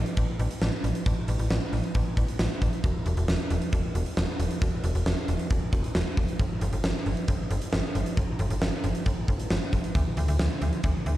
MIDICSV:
0, 0, Header, 1, 3, 480
1, 0, Start_track
1, 0, Tempo, 444444
1, 1146, Time_signature, 4, 2, 24, 8
1, 12068, End_track
2, 0, Start_track
2, 0, Title_t, "FM bass"
2, 0, Program_c, 0, 39
2, 186, Note_on_c, 0, 33, 112
2, 280, Note_off_c, 0, 33, 0
2, 426, Note_on_c, 0, 33, 106
2, 519, Note_off_c, 0, 33, 0
2, 666, Note_on_c, 0, 33, 109
2, 760, Note_off_c, 0, 33, 0
2, 906, Note_on_c, 0, 33, 95
2, 1000, Note_off_c, 0, 33, 0
2, 1146, Note_on_c, 0, 33, 109
2, 1240, Note_off_c, 0, 33, 0
2, 1386, Note_on_c, 0, 33, 103
2, 1480, Note_off_c, 0, 33, 0
2, 1506, Note_on_c, 0, 33, 93
2, 1600, Note_off_c, 0, 33, 0
2, 1626, Note_on_c, 0, 33, 104
2, 1720, Note_off_c, 0, 33, 0
2, 1867, Note_on_c, 0, 33, 94
2, 1960, Note_off_c, 0, 33, 0
2, 2106, Note_on_c, 0, 33, 112
2, 2200, Note_off_c, 0, 33, 0
2, 2345, Note_on_c, 0, 33, 105
2, 2439, Note_off_c, 0, 33, 0
2, 2586, Note_on_c, 0, 33, 101
2, 2680, Note_off_c, 0, 33, 0
2, 2827, Note_on_c, 0, 33, 103
2, 2920, Note_off_c, 0, 33, 0
2, 3066, Note_on_c, 0, 28, 110
2, 3160, Note_off_c, 0, 28, 0
2, 3307, Note_on_c, 0, 28, 106
2, 3400, Note_off_c, 0, 28, 0
2, 3426, Note_on_c, 0, 28, 104
2, 3520, Note_off_c, 0, 28, 0
2, 3546, Note_on_c, 0, 28, 101
2, 3639, Note_off_c, 0, 28, 0
2, 3786, Note_on_c, 0, 28, 108
2, 3880, Note_off_c, 0, 28, 0
2, 4027, Note_on_c, 0, 28, 110
2, 4120, Note_off_c, 0, 28, 0
2, 4266, Note_on_c, 0, 28, 103
2, 4360, Note_off_c, 0, 28, 0
2, 4505, Note_on_c, 0, 28, 104
2, 4599, Note_off_c, 0, 28, 0
2, 4746, Note_on_c, 0, 28, 102
2, 4839, Note_off_c, 0, 28, 0
2, 4987, Note_on_c, 0, 28, 105
2, 5080, Note_off_c, 0, 28, 0
2, 5226, Note_on_c, 0, 28, 105
2, 5320, Note_off_c, 0, 28, 0
2, 5346, Note_on_c, 0, 28, 99
2, 5440, Note_off_c, 0, 28, 0
2, 5466, Note_on_c, 0, 28, 101
2, 5560, Note_off_c, 0, 28, 0
2, 5707, Note_on_c, 0, 28, 103
2, 5800, Note_off_c, 0, 28, 0
2, 5947, Note_on_c, 0, 28, 104
2, 6040, Note_off_c, 0, 28, 0
2, 6185, Note_on_c, 0, 28, 98
2, 6279, Note_off_c, 0, 28, 0
2, 6427, Note_on_c, 0, 28, 105
2, 6520, Note_off_c, 0, 28, 0
2, 6667, Note_on_c, 0, 28, 102
2, 6761, Note_off_c, 0, 28, 0
2, 6907, Note_on_c, 0, 31, 107
2, 7000, Note_off_c, 0, 31, 0
2, 7146, Note_on_c, 0, 31, 108
2, 7240, Note_off_c, 0, 31, 0
2, 7266, Note_on_c, 0, 31, 100
2, 7360, Note_off_c, 0, 31, 0
2, 7387, Note_on_c, 0, 31, 98
2, 7480, Note_off_c, 0, 31, 0
2, 7627, Note_on_c, 0, 31, 95
2, 7720, Note_off_c, 0, 31, 0
2, 7867, Note_on_c, 0, 31, 107
2, 7960, Note_off_c, 0, 31, 0
2, 8107, Note_on_c, 0, 31, 107
2, 8200, Note_off_c, 0, 31, 0
2, 8346, Note_on_c, 0, 31, 108
2, 8440, Note_off_c, 0, 31, 0
2, 8587, Note_on_c, 0, 31, 101
2, 8680, Note_off_c, 0, 31, 0
2, 8827, Note_on_c, 0, 31, 101
2, 8920, Note_off_c, 0, 31, 0
2, 9066, Note_on_c, 0, 31, 110
2, 9159, Note_off_c, 0, 31, 0
2, 9186, Note_on_c, 0, 31, 100
2, 9280, Note_off_c, 0, 31, 0
2, 9306, Note_on_c, 0, 31, 106
2, 9400, Note_off_c, 0, 31, 0
2, 9546, Note_on_c, 0, 31, 101
2, 9640, Note_off_c, 0, 31, 0
2, 9787, Note_on_c, 0, 31, 107
2, 9880, Note_off_c, 0, 31, 0
2, 10025, Note_on_c, 0, 31, 110
2, 10119, Note_off_c, 0, 31, 0
2, 10266, Note_on_c, 0, 31, 107
2, 10360, Note_off_c, 0, 31, 0
2, 10508, Note_on_c, 0, 31, 99
2, 10601, Note_off_c, 0, 31, 0
2, 10747, Note_on_c, 0, 38, 108
2, 10840, Note_off_c, 0, 38, 0
2, 10986, Note_on_c, 0, 38, 108
2, 11080, Note_off_c, 0, 38, 0
2, 11105, Note_on_c, 0, 38, 100
2, 11199, Note_off_c, 0, 38, 0
2, 11226, Note_on_c, 0, 38, 99
2, 11319, Note_off_c, 0, 38, 0
2, 11465, Note_on_c, 0, 38, 101
2, 11559, Note_off_c, 0, 38, 0
2, 11706, Note_on_c, 0, 38, 105
2, 11800, Note_off_c, 0, 38, 0
2, 11946, Note_on_c, 0, 38, 106
2, 12040, Note_off_c, 0, 38, 0
2, 12068, End_track
3, 0, Start_track
3, 0, Title_t, "Drums"
3, 64, Note_on_c, 9, 42, 49
3, 172, Note_off_c, 9, 42, 0
3, 182, Note_on_c, 9, 42, 82
3, 186, Note_on_c, 9, 36, 98
3, 290, Note_off_c, 9, 42, 0
3, 294, Note_off_c, 9, 36, 0
3, 426, Note_on_c, 9, 42, 66
3, 534, Note_off_c, 9, 42, 0
3, 546, Note_on_c, 9, 42, 59
3, 654, Note_off_c, 9, 42, 0
3, 665, Note_on_c, 9, 38, 114
3, 773, Note_off_c, 9, 38, 0
3, 908, Note_on_c, 9, 42, 82
3, 1016, Note_off_c, 9, 42, 0
3, 1027, Note_on_c, 9, 42, 57
3, 1135, Note_off_c, 9, 42, 0
3, 1146, Note_on_c, 9, 36, 118
3, 1146, Note_on_c, 9, 42, 83
3, 1254, Note_off_c, 9, 36, 0
3, 1254, Note_off_c, 9, 42, 0
3, 1383, Note_on_c, 9, 42, 80
3, 1491, Note_off_c, 9, 42, 0
3, 1505, Note_on_c, 9, 42, 60
3, 1613, Note_off_c, 9, 42, 0
3, 1626, Note_on_c, 9, 38, 120
3, 1734, Note_off_c, 9, 38, 0
3, 1865, Note_on_c, 9, 46, 57
3, 1973, Note_off_c, 9, 46, 0
3, 1985, Note_on_c, 9, 42, 49
3, 2093, Note_off_c, 9, 42, 0
3, 2103, Note_on_c, 9, 42, 85
3, 2106, Note_on_c, 9, 36, 97
3, 2211, Note_off_c, 9, 42, 0
3, 2214, Note_off_c, 9, 36, 0
3, 2345, Note_on_c, 9, 36, 99
3, 2346, Note_on_c, 9, 42, 65
3, 2453, Note_off_c, 9, 36, 0
3, 2454, Note_off_c, 9, 42, 0
3, 2466, Note_on_c, 9, 42, 61
3, 2574, Note_off_c, 9, 42, 0
3, 2584, Note_on_c, 9, 38, 118
3, 2692, Note_off_c, 9, 38, 0
3, 2827, Note_on_c, 9, 36, 92
3, 2828, Note_on_c, 9, 42, 87
3, 2935, Note_off_c, 9, 36, 0
3, 2936, Note_off_c, 9, 42, 0
3, 2946, Note_on_c, 9, 42, 54
3, 3054, Note_off_c, 9, 42, 0
3, 3066, Note_on_c, 9, 36, 118
3, 3066, Note_on_c, 9, 42, 84
3, 3174, Note_off_c, 9, 36, 0
3, 3174, Note_off_c, 9, 42, 0
3, 3302, Note_on_c, 9, 42, 78
3, 3410, Note_off_c, 9, 42, 0
3, 3425, Note_on_c, 9, 42, 61
3, 3533, Note_off_c, 9, 42, 0
3, 3546, Note_on_c, 9, 38, 125
3, 3654, Note_off_c, 9, 38, 0
3, 3785, Note_on_c, 9, 42, 82
3, 3893, Note_off_c, 9, 42, 0
3, 3905, Note_on_c, 9, 42, 50
3, 4014, Note_off_c, 9, 42, 0
3, 4023, Note_on_c, 9, 42, 81
3, 4026, Note_on_c, 9, 36, 97
3, 4131, Note_off_c, 9, 42, 0
3, 4134, Note_off_c, 9, 36, 0
3, 4267, Note_on_c, 9, 42, 65
3, 4375, Note_off_c, 9, 42, 0
3, 4387, Note_on_c, 9, 42, 59
3, 4495, Note_off_c, 9, 42, 0
3, 4505, Note_on_c, 9, 38, 111
3, 4613, Note_off_c, 9, 38, 0
3, 4748, Note_on_c, 9, 42, 86
3, 4856, Note_off_c, 9, 42, 0
3, 4867, Note_on_c, 9, 42, 57
3, 4975, Note_off_c, 9, 42, 0
3, 4987, Note_on_c, 9, 36, 120
3, 4987, Note_on_c, 9, 42, 83
3, 5095, Note_off_c, 9, 36, 0
3, 5095, Note_off_c, 9, 42, 0
3, 5224, Note_on_c, 9, 42, 77
3, 5332, Note_off_c, 9, 42, 0
3, 5346, Note_on_c, 9, 42, 59
3, 5454, Note_off_c, 9, 42, 0
3, 5466, Note_on_c, 9, 38, 124
3, 5574, Note_off_c, 9, 38, 0
3, 5705, Note_on_c, 9, 42, 77
3, 5813, Note_off_c, 9, 42, 0
3, 5825, Note_on_c, 9, 42, 48
3, 5933, Note_off_c, 9, 42, 0
3, 5943, Note_on_c, 9, 42, 84
3, 5947, Note_on_c, 9, 36, 101
3, 6051, Note_off_c, 9, 42, 0
3, 6055, Note_off_c, 9, 36, 0
3, 6185, Note_on_c, 9, 36, 100
3, 6187, Note_on_c, 9, 42, 65
3, 6293, Note_off_c, 9, 36, 0
3, 6295, Note_off_c, 9, 42, 0
3, 6307, Note_on_c, 9, 42, 59
3, 6415, Note_off_c, 9, 42, 0
3, 6425, Note_on_c, 9, 38, 116
3, 6533, Note_off_c, 9, 38, 0
3, 6667, Note_on_c, 9, 36, 94
3, 6668, Note_on_c, 9, 46, 86
3, 6775, Note_off_c, 9, 36, 0
3, 6776, Note_off_c, 9, 46, 0
3, 6787, Note_on_c, 9, 42, 55
3, 6895, Note_off_c, 9, 42, 0
3, 6906, Note_on_c, 9, 42, 83
3, 6907, Note_on_c, 9, 36, 119
3, 7014, Note_off_c, 9, 42, 0
3, 7015, Note_off_c, 9, 36, 0
3, 7143, Note_on_c, 9, 42, 78
3, 7251, Note_off_c, 9, 42, 0
3, 7266, Note_on_c, 9, 42, 59
3, 7374, Note_off_c, 9, 42, 0
3, 7386, Note_on_c, 9, 38, 127
3, 7494, Note_off_c, 9, 38, 0
3, 7625, Note_on_c, 9, 46, 57
3, 7733, Note_off_c, 9, 46, 0
3, 7745, Note_on_c, 9, 42, 49
3, 7853, Note_off_c, 9, 42, 0
3, 7863, Note_on_c, 9, 42, 85
3, 7867, Note_on_c, 9, 36, 101
3, 7971, Note_off_c, 9, 42, 0
3, 7975, Note_off_c, 9, 36, 0
3, 8106, Note_on_c, 9, 42, 65
3, 8214, Note_off_c, 9, 42, 0
3, 8226, Note_on_c, 9, 42, 62
3, 8334, Note_off_c, 9, 42, 0
3, 8344, Note_on_c, 9, 38, 112
3, 8452, Note_off_c, 9, 38, 0
3, 8588, Note_on_c, 9, 42, 84
3, 8696, Note_off_c, 9, 42, 0
3, 8707, Note_on_c, 9, 42, 56
3, 8815, Note_off_c, 9, 42, 0
3, 8826, Note_on_c, 9, 42, 80
3, 8827, Note_on_c, 9, 36, 116
3, 8934, Note_off_c, 9, 42, 0
3, 8935, Note_off_c, 9, 36, 0
3, 9063, Note_on_c, 9, 42, 76
3, 9171, Note_off_c, 9, 42, 0
3, 9185, Note_on_c, 9, 42, 60
3, 9293, Note_off_c, 9, 42, 0
3, 9306, Note_on_c, 9, 38, 124
3, 9414, Note_off_c, 9, 38, 0
3, 9545, Note_on_c, 9, 42, 78
3, 9653, Note_off_c, 9, 42, 0
3, 9665, Note_on_c, 9, 42, 50
3, 9773, Note_off_c, 9, 42, 0
3, 9783, Note_on_c, 9, 42, 86
3, 9787, Note_on_c, 9, 36, 102
3, 9891, Note_off_c, 9, 42, 0
3, 9895, Note_off_c, 9, 36, 0
3, 10025, Note_on_c, 9, 36, 100
3, 10027, Note_on_c, 9, 42, 63
3, 10133, Note_off_c, 9, 36, 0
3, 10135, Note_off_c, 9, 42, 0
3, 10147, Note_on_c, 9, 42, 62
3, 10255, Note_off_c, 9, 42, 0
3, 10265, Note_on_c, 9, 38, 112
3, 10373, Note_off_c, 9, 38, 0
3, 10508, Note_on_c, 9, 36, 90
3, 10508, Note_on_c, 9, 42, 86
3, 10616, Note_off_c, 9, 36, 0
3, 10616, Note_off_c, 9, 42, 0
3, 10627, Note_on_c, 9, 42, 54
3, 10735, Note_off_c, 9, 42, 0
3, 10746, Note_on_c, 9, 42, 83
3, 10747, Note_on_c, 9, 36, 117
3, 10854, Note_off_c, 9, 42, 0
3, 10855, Note_off_c, 9, 36, 0
3, 10983, Note_on_c, 9, 42, 78
3, 11091, Note_off_c, 9, 42, 0
3, 11106, Note_on_c, 9, 42, 60
3, 11214, Note_off_c, 9, 42, 0
3, 11226, Note_on_c, 9, 38, 121
3, 11334, Note_off_c, 9, 38, 0
3, 11465, Note_on_c, 9, 42, 78
3, 11573, Note_off_c, 9, 42, 0
3, 11585, Note_on_c, 9, 42, 50
3, 11693, Note_off_c, 9, 42, 0
3, 11702, Note_on_c, 9, 42, 82
3, 11706, Note_on_c, 9, 36, 97
3, 11810, Note_off_c, 9, 42, 0
3, 11814, Note_off_c, 9, 36, 0
3, 11946, Note_on_c, 9, 42, 67
3, 12054, Note_off_c, 9, 42, 0
3, 12068, End_track
0, 0, End_of_file